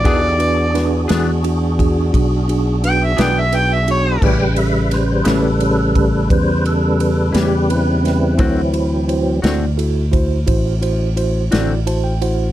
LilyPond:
<<
  \new Staff \with { instrumentName = "Harmonica" } { \time 12/8 \key a \mixolydian \tempo 4. = 58 d''4. r2 r8 g''16 e''16 g''16 e''16 g''16 e''16 cis''8 | r1. | r1. | }
  \new Staff \with { instrumentName = "Tonewheel organ" } { \time 12/8 \key a \mixolydian <dis' g' a'>8 <d' fis' gis'>1~ <d' fis' gis'>4. | g''8 e''8 c''8 <gis' a'>4. c''8 a'8 a'8 g'8 <c' e'>4~ | <c' e'>4 r1 r4 | }
  \new Staff \with { instrumentName = "Tonewheel organ" } { \clef bass \time 12/8 \key a \mixolydian r1. | <cis g b'>1. | <e fis c'>4. r1 r8 | }
  \new Staff \with { instrumentName = "Tine electric piano" } { \time 12/8 \key a \mixolydian << { r1. | r1. | r1 r4 a''16 g''16 fis''8 | } \\ { <d' fis' gis'>8 <d' fis' b'>8 <d' fis' b'>8 <d' fis' gis'>8 <d' fis' gis'>8 <d' fis' gis'>8 <d' fis' gis'>8 <d' fis' gis'>8 <d' fis' b'>8 <d' fis' b'>8 <d' fis' b'>8 <d' fis' gis'>8 | <cis' g' b'>8 <cis' g' a'>8 <cis' g' b'>8 <cis' g' b'>8 <cis' g' cis''>8 <cis' g' b'>8 <cis' g' b'>8 <cis' g' b'>8 <cis' g' b'>8 <cis' g' b'>8 <cis' g' b'>8 <cis' g' b'>8 | <e' fis' c''>8 <e' fis' c''>8 <e' fis' c''>8 <e' fis' d''>8 <e' fis' a'>8 <e' fis' c''>8 <e' fis' c''>8 <e' fis' c''>8 <e' fis' c''>8 <e' fis' d''>8 <e' fis' c''>8 <e' fis' c''>8 | } >> }
  \new Staff \with { instrumentName = "Clean electric guitar" } { \time 12/8 \key a \mixolydian <e b d' gis'>8 r4 <e b d' gis'>8 r2 r8 <e b d' gis'>8 r4 | <a, g cis' e'>8 r4 <a, g cis' e'>8 r2 r8 <a, g cis' e'>8 r4 | <d a c' fis'>8 r4 <d a c' fis'>8 r2 r8 <d a c' fis'>8 r4 | }
  \new Staff \with { instrumentName = "Fingered electric bass" } { \clef bass \time 12/8 \key a \mixolydian e,4. e,4. b,,4. b,,4. | a,,4. a,,4. e,4. e,4. | d,4. d,4. a,,4. a,,4. | }
  \new DrumStaff \with { instrumentName = "Drums" } \drummode { \time 12/8 <bd cymr>8 cymr8 <cymr sn>8 <cymr sn>8 cymr8 <bd cymr>8 <bd cymr>8 cymr8 cymr8 <cymr sn>8 cymr8 cymr8 | <cymc bd>8 cymr8 <cymr sn>8 <cymr sn>8 cymr8 <bd cymr>8 <bd cymr>8 cymr8 cymr8 <cymr sn>8 cymr8 <cymr sn>8 | <bd cymr>8 cymr8 cymr8 <cymr sn>8 cymr8 <bd cymr>8 <bd cymr>8 cymr8 cymr8 <cymr sn>8 cymr8 cymr8 | }
>>